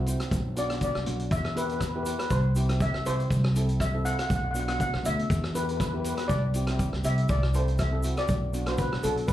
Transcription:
Already playing: C2
0.06 C4 E4 C5, closed hi-hat, shaker
0.20 cross-stick, closed hi-hat, shaker
0.31 B1, kick, closed hi-hat, shaker
0.56 B3 D4 F#4 D5, closed hi-hat, shaker
0.68 B3 D4 F#4, cross-stick, closed hi-hat
0.81 D5, kick, closed hi-hat, shaker
0.95 B1, cross-stick
1.05 B1 B3 D4 F#4, closed hi-hat
1.19 closed hi-hat
1.31 E2 E5, kick, closed hi-hat, shaker
1.45 cross-stick
1.55 B3 E4 G4 B4, closed hi-hat, shaker
1.65 B4
1.69 B4, closed hi-hat, shaker
1.79 B4, kick, cross-stick, closed hi-hat, shaker
1.87 B4
1.94 B3 E4 G4 B4
2.03 B3 E4 G4 B4, closed hi-hat, shaker
2.10 B4
2.19 B4, cross-stick, closed hi-hat, shaker
2.30 C2 C5, kick, closed hi-hat, shaker
2.55 C4 E4 G4, closed hi-hat, shaker
2.69 C4 E4 G4, cross-stick, closed hi-hat, shaker
2.80 E5, kick, closed hi-hat, shaker
2.94 C2, cross-stick
3.06 C2 C4 E4 G4 C5, closed hi-hat, shaker
3.20 closed hi-hat, shaker
3.30 C2, kick, closed hi-hat, shaker
3.44 cross-stick
3.55 C4 E4 A4, closed hi-hat, shaker
3.69 closed hi-hat, shaker
3.80 E5, kick, cross-stick, closed hi-hat, shaker
3.93 C4 E4 A4
4.04 C4 E4 A4 F#5, closed hi-hat, shaker
4.13 F#5
4.19 F#5, cross-stick, closed hi-hat, shaker
4.27 B1 F#5, kick, closed hi-hat, shaker
4.36 F#5
4.45 F#5
4.51 B3 D4 F#5, shaker
4.56 F#4, closed hi-hat
4.60 F#5
4.68 B3 D4 F#4 F#5, cross-stick, closed hi-hat
4.80 F#5, kick, closed hi-hat, shaker
4.94 B1, cross-stick
5.03 D2 B3 D4 F#4 E5, closed hi-hat, shaker
5.19 closed hi-hat
5.30 E2, kick, closed hi-hat, shaker
5.44 cross-stick
5.54 B3 E4 G4 B4, closed hi-hat, shaker
5.63 B4
5.69 B4, closed hi-hat, shaker
5.77 B4, kick, cross-stick, closed hi-hat, shaker
5.85 B4
5.92 B3 E4 G4 B4
6.00 B4
6.04 B3 E4 G4 B4, closed hi-hat, shaker
6.15 B4, cross-stick, closed hi-hat, shaker
6.28 C2 D5, kick, closed hi-hat, shaker
6.54 C4 E4 G4, closed hi-hat, shaker
6.67 C4 E4 G4, cross-stick, closed hi-hat
6.79 kick, closed hi-hat, shaker
6.93 C2, cross-stick
7.04 C2 C4 E4 G4 E5, closed hi-hat, shaker
7.18 closed hi-hat
7.29 C2 D5, kick, closed hi-hat, shaker
7.43 cross-stick
7.54 C4 E4 A4 C5, closed hi-hat, shaker
7.67 closed hi-hat, shaker
7.78 E5, kick, cross-stick, closed hi-hat, shaker
7.91 C4 E4 A4
8.03 C4 E4 F#4, closed hi-hat, shaker
8.17 D5, cross-stick, closed hi-hat, shaker
8.28 B1, kick, closed hi-hat, shaker
8.53 B3 D4 F#4, closed hi-hat, shaker
8.66 B3 D4 F#4 C5, cross-stick, closed hi-hat
8.78 B4, kick, closed hi-hat, shaker
8.92 B1, cross-stick
9.03 B1 B3 D4 F#4 A4, closed hi-hat, shaker
9.17 closed hi-hat
9.28 E2 B4, kick, closed hi-hat, shaker

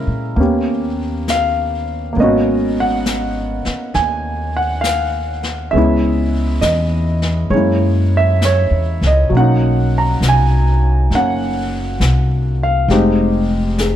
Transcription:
Already playing: G#3 A#3 C#4 E4 A#4 E5
0.07 A#2
0.36 D#2 A#3 B3 C#4, brush sweep
0.41 G4
1.28 F5, snare, hi-hat pedal
2.13 G#1 A#3 B3
2.17 C#4 D#5, brush sweep
2.24 F#4
2.80 F#5
3.06 snare, hi-hat pedal
3.65 muted upright bass stroke, snare
3.94 D#2 G#5, brush sweep, snare
4.57 F#5
4.81 F5, snare, hi-hat pedal
5.43 snare
5.71 C#2 G#3 B3 E5, brush sweep
5.76 C#4 E4
6.61 E2 D#5, snare, hi-hat pedal
7.22 snare
7.50 F#2 G#3 A#3 C#5, brush sweep
7.55 C#4 E4
8.17 E5
8.42 C#5, snare, hi-hat pedal
8.71 E2
9.01 C#2, snare
9.07 D#5
9.30 B1 F#3 A#3, brush sweep
9.37 C#4 D#4 F#5
9.98 A#5
10.21 C2, snare, hi-hat pedal
10.29 G#5
11.11 F#1 A#3, brush sweep, snare
11.15 C#4 F#5
12.00 C2, snare, hi-hat pedal
12.63 F5
12.88 F1 G#3 C4 D#4 G4, brush sweep, snare
13.78 G#4, snare, hi-hat pedal

